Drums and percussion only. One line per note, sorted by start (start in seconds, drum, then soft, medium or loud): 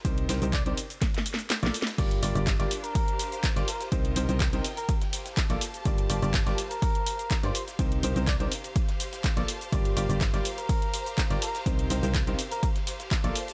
0.05 kick loud
0.05 closed hi-hat medium
0.05 ride medium
0.05 shaker soft
0.18 closed hi-hat soft
0.29 snare loud
0.29 open hi-hat medium
0.29 ride medium
0.29 shaker medium
0.42 closed hi-hat soft
0.42 shaker soft
0.53 kick loud
0.53 snare loud
0.53 clap loud
0.53 closed hi-hat medium
0.53 ride medium
0.53 shaker soft
0.66 closed hi-hat soft
0.77 open hi-hat loud
0.77 ride medium
0.77 shaker medium
0.90 closed hi-hat soft
0.90 ride soft
0.90 shaker soft
1.02 kick loud
1.02 snare medium
1.02 closed hi-hat medium
1.02 ride medium
1.02 shaker soft
1.14 snare soft
1.14 closed hi-hat soft
1.18 snare medium
1.26 open hi-hat loud
1.26 ride medium
1.26 shaker medium
1.34 snare medium
1.39 closed hi-hat soft
1.39 ride soft
1.39 shaker soft
1.50 snare loud
1.50 snare medium
1.50 clap loud
1.50 closed hi-hat medium
1.50 ride medium
1.50 shaker soft
1.63 snare soft
1.63 closed hi-hat soft
1.66 snare loud
1.74 open hi-hat loud
1.74 ride medium
1.74 shaker medium
1.82 snare loud
1.87 snare loud
1.87 closed hi-hat soft
1.87 ride medium
1.87 shaker soft
1.98 kick loud
1.98 closed hi-hat medium
1.98 ride medium
1.98 crash loud
1.98 shaker soft
2.11 closed hi-hat soft
2.11 ride soft
2.23 open hi-hat loud
2.23 ride medium
2.23 shaker medium
2.35 closed hi-hat soft
2.35 shaker soft
2.47 kick loud
2.47 snare loud
2.47 clap loud
2.47 closed hi-hat medium
2.47 ride medium
2.47 shaker soft
2.60 snare soft
2.60 closed hi-hat soft
2.71 open hi-hat loud
2.71 ride medium
2.71 shaker medium
2.84 closed hi-hat soft
2.84 ride soft
2.84 shaker soft
2.95 kick loud
2.95 closed hi-hat medium
2.95 open hi-hat medium
2.95 shaker soft
3.08 closed hi-hat soft
3.19 open hi-hat loud
3.19 ride medium
3.19 shaker medium
3.32 closed hi-hat soft
3.32 shaker soft
3.44 kick loud
3.44 snare loud
3.44 clap loud
3.44 closed hi-hat medium
3.44 ride medium
3.44 shaker soft
3.56 snare medium
3.56 closed hi-hat soft
3.68 open hi-hat loud
3.68 ride medium
3.68 shaker medium
3.81 snare soft
3.81 closed hi-hat soft
3.81 shaker soft
3.92 kick loud
3.92 closed hi-hat medium
3.92 ride medium
3.92 shaker soft
4.05 closed hi-hat soft
4.16 open hi-hat loud
4.16 ride medium
4.16 shaker medium
4.29 closed hi-hat soft
4.29 shaker soft
4.40 kick loud
4.40 snare loud
4.40 clap loud
4.40 closed hi-hat medium
4.40 ride medium
4.40 shaker soft
4.53 closed hi-hat soft
4.64 open hi-hat loud
4.64 ride medium
4.64 shaker medium
4.77 closed hi-hat soft
4.77 ride soft
4.77 shaker soft
4.89 kick loud
4.89 closed hi-hat medium
4.89 ride medium
4.89 shaker soft
5.01 snare soft
5.01 closed hi-hat soft
5.13 snare soft
5.13 open hi-hat loud
5.13 ride medium
5.13 shaker medium
5.26 snare medium
5.26 closed hi-hat soft
5.26 shaker soft
5.37 kick loud
5.37 snare loud
5.37 clap loud
5.37 closed hi-hat medium
5.37 ride medium
5.37 shaker soft
5.50 closed hi-hat soft
5.50 ride soft
5.61 open hi-hat loud
5.61 ride medium
5.61 shaker medium
5.74 closed hi-hat soft
5.74 shaker soft
5.85 kick loud
5.85 closed hi-hat medium
5.85 ride medium
5.85 shaker soft
5.98 closed hi-hat soft
5.98 ride soft
6.10 open hi-hat loud
6.10 ride medium
6.10 shaker medium
6.22 closed hi-hat soft
6.22 shaker soft
6.34 kick loud
6.34 snare loud
6.34 clap loud
6.34 closed hi-hat medium
6.34 ride medium
6.34 shaker soft
6.47 snare soft
6.47 closed hi-hat soft
6.58 open hi-hat loud
6.58 ride medium
6.58 shaker medium
6.71 closed hi-hat soft
6.71 ride soft
6.71 shaker soft
6.82 kick loud
6.82 closed hi-hat medium
6.82 open hi-hat medium
6.82 shaker soft
6.95 closed hi-hat soft
7.06 open hi-hat loud
7.06 ride medium
7.06 shaker medium
7.19 closed hi-hat soft
7.19 shaker soft
7.31 kick loud
7.31 snare loud
7.31 clap loud
7.31 closed hi-hat medium
7.31 ride medium
7.31 shaker soft
7.43 snare medium
7.43 closed hi-hat soft
7.55 open hi-hat loud
7.55 ride medium
7.55 shaker medium
7.68 snare soft
7.68 closed hi-hat soft
7.68 shaker soft
7.79 kick loud
7.79 closed hi-hat medium
7.79 ride medium
7.79 shaker soft
7.92 closed hi-hat soft
8.03 open hi-hat loud
8.03 ride medium
8.03 shaker medium
8.16 closed hi-hat soft
8.16 shaker soft
8.27 kick loud
8.27 snare loud
8.27 clap loud
8.27 closed hi-hat medium
8.27 ride medium
8.27 shaker soft
8.40 closed hi-hat soft
8.51 open hi-hat loud
8.51 ride medium
8.51 shaker medium
8.64 closed hi-hat soft
8.64 ride soft
8.64 shaker soft
8.76 kick loud
8.76 closed hi-hat medium
8.76 ride medium
8.76 shaker soft
8.88 snare soft
8.88 closed hi-hat soft
9.00 snare soft
9.00 open hi-hat loud
9.00 ride medium
9.00 shaker medium
9.13 snare medium
9.13 closed hi-hat soft
9.13 shaker soft
9.24 kick loud
9.24 snare loud
9.24 clap loud
9.24 closed hi-hat medium
9.24 ride medium
9.24 shaker soft
9.37 closed hi-hat soft
9.37 ride soft
9.48 open hi-hat loud
9.48 ride medium
9.48 shaker medium
9.61 closed hi-hat soft
9.61 shaker soft
9.72 kick loud
9.72 closed hi-hat medium
9.72 ride medium
9.72 shaker soft
9.85 closed hi-hat soft
9.85 ride soft
9.97 open hi-hat loud
9.97 ride medium
9.97 shaker medium
10.10 closed hi-hat soft
10.10 shaker soft
10.21 kick loud
10.21 snare loud
10.21 clap loud
10.21 closed hi-hat medium
10.21 ride medium
10.21 shaker soft
10.34 snare soft
10.34 closed hi-hat soft
10.45 open hi-hat loud
10.45 ride medium
10.45 shaker medium
10.58 closed hi-hat soft
10.58 ride soft
10.58 shaker soft
10.69 kick loud
10.69 closed hi-hat medium
10.69 open hi-hat medium
10.69 shaker soft
10.82 closed hi-hat soft
10.94 open hi-hat loud
10.94 ride medium
10.94 shaker medium
11.06 closed hi-hat soft
11.06 shaker soft
11.18 kick loud
11.18 snare loud
11.18 clap loud
11.18 closed hi-hat medium
11.18 ride medium
11.18 shaker soft
11.30 snare medium
11.30 closed hi-hat soft
11.42 open hi-hat loud
11.42 ride medium
11.42 shaker medium
11.55 snare soft
11.55 closed hi-hat soft
11.55 shaker soft
11.66 kick loud
11.66 closed hi-hat medium
11.66 ride medium
11.66 shaker soft
11.79 closed hi-hat soft
11.90 open hi-hat loud
11.90 ride medium
11.90 shaker medium
12.03 closed hi-hat soft
12.03 shaker soft
12.15 kick loud
12.15 snare loud
12.15 clap loud
12.15 closed hi-hat medium
12.15 ride medium
12.15 shaker soft
12.27 closed hi-hat soft
12.39 open hi-hat loud
12.39 ride medium
12.39 shaker medium
12.51 closed hi-hat soft
12.51 ride soft
12.51 shaker soft
12.63 kick loud
12.63 closed hi-hat medium
12.63 ride medium
12.63 shaker soft
12.76 snare soft
12.76 closed hi-hat soft
12.87 snare soft
12.87 open hi-hat loud
12.87 ride medium
12.87 shaker medium
13.00 snare medium
13.00 closed hi-hat soft
13.00 shaker soft
13.11 kick loud
13.11 snare loud
13.11 clap loud
13.11 closed hi-hat medium
13.11 ride medium
13.11 shaker soft
13.24 closed hi-hat soft
13.24 ride soft
13.35 open hi-hat loud
13.35 ride medium
13.35 shaker medium
13.48 closed hi-hat soft
13.48 shaker soft